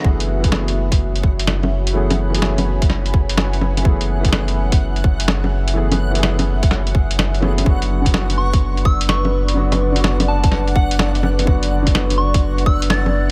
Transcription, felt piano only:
X:1
M:4/4
L:1/16
Q:"Swing 16ths" 1/4=126
K:F#m
V:1 name="Felt piano"
[E,A,B,G]3 [E,A,B,G]12- [E,A,B,G] | [E,A,B,G]3 [E,A,B,G]12- [E,A,B,G] | [E,A,B,G]3 [E,A,B,G]12- [E,A,B,G] | [E,A,B,G]3 [E,A,B,G]8- [E,A,B,G]3 [E,A,B,G]2 |
[D,F,B,F]3 [D,F,B,F]12- [D,F,B,F] | [D,F,B,F]3 [D,F,B,F]12- [D,F,B,F] | [D,F,B,F]3 [D,F,B,F]12- [D,F,B,F] |]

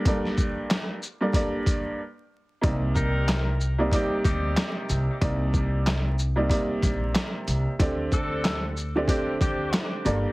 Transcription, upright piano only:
X:1
M:4/4
L:1/16
Q:"Swing 16ths" 1/4=93
K:Cdor
V:1 name="Upright piano"
[G,,G,B,Ad]6 z [G,,G,B,Ad] [G,,G,B,Ad]4 z4 | [C,G,B,Ed]6 z [C,G,B,Ed] [C,G,B,Ed]6- [C,G,B,Ed] z | [C,G,B,Ed]6 z [C,G,B,Ed] [C,G,B,Ed]6- [C,G,B,Ed] z | [D,A,CGd]6 z [D,A,CGd] [D,A,CGd]6 [G,,G,B,Ad]2 |]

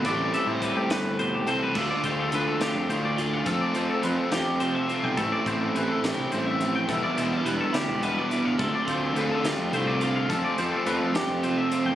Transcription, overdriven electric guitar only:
X:1
M:6/8
L:1/8
Q:3/8=70
K:Am
V:1 name="Overdriven electric guitar"
[A,,E,A,CEA]4- [A,,E,A,CEA] [A,,E,A,CEA] | [D,A,DF] [A,DF] [D,A,DF] [A,DF] [D,A,DF] [A,DF] | [F,A,CF] [A,CF] [F,A,CF] [A,CF] [F,A,CF] [A,CF] | [A,,E,A,CE] [A,CE] [E,A,CE] [A,CE] [E,A,CE] [A,CE] |
[E,G,B,E] [G,B,E] [E,G,B,E] [G,B,E] [E,G,B,E] [G,B,E] | [D,A,DF] [A,DF] [D,A,DF] [A,DF] [D,A,DF] [A,DF] | [F,A,CF] [A,CF] [F,A,CF] [A,CF] [F,A,CF] [A,CF] |]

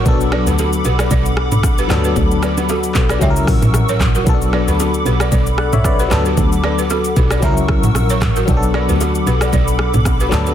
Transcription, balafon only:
X:1
M:4/4
L:1/16
Q:"Swing 16ths" 1/4=114
K:Bm
V:1 name="Balafon"
z2 [Bd] [GB] [FA] z [GB] [Bd] [Bd]2 z3 [GB] z [GB] | z2 [Bd] [GB] [FA] z [GB] [Bd] [ce]2 z3 [^Ac] z [FA] | z2 [Bd] [GB] [FA] z [GB] [Bd] [Bd]2 z3 [GB] z [GB] | z2 [Bd] [GB] [FA] z [GB] [Bd] [ce]2 z3 [^Ac] z [FA] |
z2 [Bd] [GB] [FA] z [GB] [Bd] [Bd]2 z3 [GB] z [GB] |]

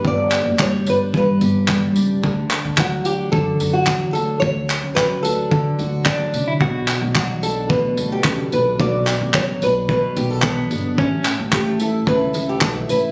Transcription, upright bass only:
X:1
M:4/4
L:1/16
Q:1/4=110
K:Bm
V:1 name="Upright bass" clef=bass
G,,,3 F,,,3 G,,,3 z G,,,4 C,,2 | D,,2 z D,,4- D,, F,,2 F,,2 E,,2 D,,2 | D,,3 C,,3 D,,2 D,2 D,,2 z D,, D,2 | B,,,2 z B,,,4- B,,, D,,2 D,,2 C,,2 B,,,2 |
B,,,3 A,,,3 B,,,3 z B,,,4 G,,,2 | A,,,2 z A,,,4- A,,, C,,2 C,,2 B,,,2 A,,,2 |]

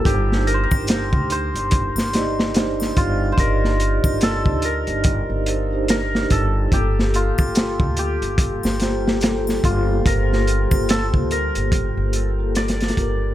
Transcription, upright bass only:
X:1
M:4/4
L:1/16
Q:"Swing 16ths" 1/4=72
K:Gm
V:1 name="Upright bass" clef=bass
G,,,3 G,,,2 D,,2 G,,,2 G,,,4- G,,, G,,,2 | G,,,3 G,,,2 D,,2 G,,,2 G,,,4- G,,, G,,,2 | G,,,3 G,,,2 D,,2 G,,,2 G,,,4- G,,, G,,,2 | G,,,3 G,,,2 D,,2 G,,,2 G,,,4- G,,, G,,,2 |]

